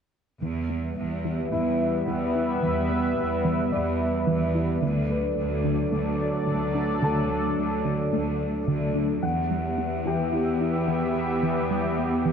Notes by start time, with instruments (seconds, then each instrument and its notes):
0.42 cello section E2, synth arpeggio sound E3, analog synth pad G3 B3 B4 E5
0.70 synth arpeggio sound B3
0.97 cello section E2
1.25 synth arpeggio sound E3
1.52 cello section E2, synth arpeggio sound B3, grand piano E4 E5
2.07 cello section E2, synth arpeggio sound E3
2.35 synth arpeggio sound E4
2.62 cello section E2, synth arpeggio sound E3
2.90 synth arpeggio sound B3
3.17 cello section E2
3.45 synth arpeggio sound E3
3.72 cello section E2, synth arpeggio sound B3, grand piano D5
4.27 cello section E2, synth arpeggio sound E3
4.55 synth arpeggio sound E4
4.82 cello section D2, synth arpeggio sound D3, analog synth pad F#3 D4 A4 D5
5.10 synth arpeggio sound A3, grand piano B4
5.38 cello section D2
5.64 synth arpeggio sound D3
5.92 cello section D2, synth arpeggio sound A3
6.47 cello section D2, synth arpeggio sound D3
6.75 synth arpeggio sound D4
7.02 cello section D2, synth arpeggio sound D3, grand piano A4 A5
7.30 synth arpeggio sound A3
7.58 cello section D2
7.85 synth arpeggio sound D3
8.13 cello section D2, synth arpeggio sound A3
8.68 cello section D2, synth arpeggio sound D3
8.95 synth arpeggio sound D4
9.22 cello section E2, analog synth pad E3 B3 G4 E5, synth arpeggio sound E3, grand piano F#5
9.51 synth arpeggio sound G3
9.78 synth arpeggio sound B3
10.05 synth arpeggio sound E3, grand piano G4 G5
10.33 synth arpeggio sound E4
10.61 synth arpeggio sound E4
10.88 synth arpeggio sound E3
11.43 synth arpeggio sound E3
11.71 synth arpeggio sound G3
11.98 synth arpeggio sound B3
12.26 synth arpeggio sound E3